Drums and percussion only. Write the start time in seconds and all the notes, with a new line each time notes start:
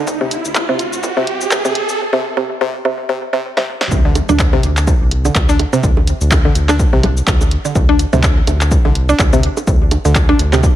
0.07 kick, cabasa
0.31 closed hi-hat, cabasa
0.45 cabasa
0.55 kick, clap, cabasa
0.79 closed hi-hat, cabasa
0.93 cabasa
1.03 kick, cabasa
1.27 closed hi-hat
1.41 cabasa
1.51 kick, clap, cabasa
1.65 cabasa
1.75 closed hi-hat
1.89 cabasa
3.57 snare
3.81 snare
3.91 kick, cabasa
4.15 closed hi-hat, low bongo, cabasa
4.29 low conga, cabasa
4.39 kick, clap, cabasa
4.53 low bongo
4.63 closed hi-hat, cabasa
4.77 clap, cabasa
4.87 kick, low bongo, cabasa
5.11 closed hi-hat
5.25 low bongo, cabasa
5.35 kick, clap, cabasa
5.49 cabasa
5.59 closed hi-hat, low bongo
5.73 cabasa
5.83 kick, cabasa
5.97 low bongo
6.07 closed hi-hat, cabasa
6.21 cabasa
6.31 kick, clap, low bongo, cabasa
6.55 closed hi-hat, cabasa
6.69 clap, low bongo, cabasa
6.79 kick, cabasa
7.03 closed hi-hat, low bongo, low conga
7.17 cabasa
7.27 kick, clap, cabasa
7.41 low bongo, cabasa
7.51 closed hi-hat
7.65 cabasa
7.75 kick, low bongo, cabasa
7.99 closed hi-hat, cabasa
8.13 low bongo, low conga, cabasa
8.23 kick, clap, cabasa
8.47 closed hi-hat, low bongo, cabasa
8.61 clap, cabasa
8.71 kick, cabasa
8.85 low bongo
8.95 closed hi-hat
9.09 cabasa
9.19 kick, clap, low bongo, cabasa
9.33 cabasa
9.43 closed hi-hat
9.57 low bongo, cabasa
9.67 kick, cabasa
9.91 closed hi-hat, low bongo, cabasa
10.05 cabasa
10.15 kick, clap, cabasa
10.29 low bongo
10.39 closed hi-hat, cabasa
10.53 clap, cabasa
10.63 kick, low bongo, cabasa